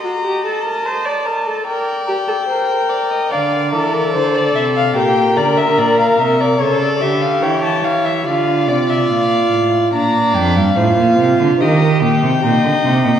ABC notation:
X:1
M:4/4
L:1/16
Q:1/4=73
K:Dphr
V:1 name="Violin"
b2 a6 g8 | f2 A B c d =e f g2 d e d f e d | ^c d =e f g a f e f2 d e f4 | [K:Bb] b2 g f4- f e2 g6 |]
V:2 name="Violin"
e8 d4 c2 d e | d8 B8 | A4 ^c4 d8 | [K:Bb] d4 c4 B2 G2 e4 |]
V:3 name="Viola"
^F G A B c d B A B2 G A B4 | d2 B A4- A G2 B6 | A2 G6 F8 | [K:Bb] D4 F4 G4 E4 |]
V:4 name="Cello" clef=bass
z16 | D,2 =E,2 D,2 C,2 B,,2 D,2 B,,2 C,2 | ^C,2 D,2 =E,2 E,2 D,2 =C,2 B,,2 A,,2 | [K:Bb] B,,2 F,, G,, A,, B,, C, D, E,2 B,, C, B,, D, C, B,, |]